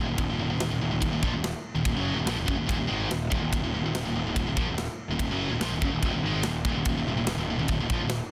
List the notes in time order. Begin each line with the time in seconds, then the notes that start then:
0.06 D#1 D#2 A#2
0.17 D#1 D#2 A#2, kick, ride bell
0.29 D#1 D#2 A#2
0.40 D#1 D#2 A#2
0.49 D#1 D#2 A#2
0.60 D#1 D#2 A#2, snare, ride bell
0.70 D#1 D#2 A#2
0.81 D#1 D#2 A#2
0.91 D#1 D#2 A#2
1.02 D#1 D#2 A#2, kick, ride bell
1.12 D#1 D#2 A#2
1.22 A#1 A#2 F3, kick
1.32 D#1 D#2 A#2
1.44 snare, ride bell
1.74 D#1 D#2 A#2
1.85 D#1 D#2 A#2, kick, ride bell
1.94 F#1 F#2 C#3 F#3
2.15 D#1 D#2 A#2
2.25 A#1 A#2 F3, snare, ride bell
2.35 D#1 D#2 A#2
2.46 F#1 F#2 C#3, kick
2.56 D#2 A#2
2.60 D#1
2.66 D#1 D#2 A#2, kick
2.70 ride bell
2.77 D#1 D#2 A#2
2.88 G#1 G#2 D#3 G#3
3.10 D#1 D#2 A#2, snare, ride bell
3.31 D#1 D#2 A#2, kick
3.41 D#1 D#2 A#2
3.52 D#1 D#2 A#2, kick, ride bell
3.62 D#1 D#2 A#2
3.73 D#1 D#2 A#2
3.82 D#1 D#2 A#2
3.93 D#1 D#2 A#2, snare, ride bell
4.03 D#1 D#2 A#2
4.14 D#1 D#2 A#2
4.24 D#1 D#2 A#2
4.35 D#1 D#2 A#2, kick, ride bell
4.46 D#1 D#2 A#2
4.56 A#1 A#2 F3, kick
4.67 D#1 D#2 A#2
4.78 snare, ride bell
5.08 D#1 D#2 A#2
5.19 D#1 D#2 A#2, kick, ride bell
5.29 F#1 F#2 C#3 F#3
5.50 D#1 D#2 A#2
5.60 A#1 A#2 F3, snare, ride bell
5.71 D#1 D#2 A#2
5.81 F#1 F#2 C#3, kick
5.91 D#1 D#2 A#2
6.01 D#1 D#2 A#2, kick, ride bell
6.13 D#1 D#2 A#2
6.22 G#1 G#2 D#3 G#3
6.43 D#1 D#2 A#2, snare, ride bell
6.64 D#1 D#2 A#2, kick
6.75 D#1 D#2 A#2
6.85 D#1 D#2 A#2, kick, ride bell
6.95 D#1 D#2 A#2
7.06 D#1 D#2 A#2
7.16 D#1 D#2 A#2
7.26 D#1 D#2 A#2, snare, ride bell
7.37 D#1 D#2 A#2
7.47 D#1 D#2 A#2
7.58 D#1 D#2 A#2
7.68 D#1 D#2 A#2, kick, ride bell
7.80 D#1 D#2 A#2
7.89 A#1 A#2 F3, kick
7.99 D#1 D#2 A#2
8.10 snare, ride bell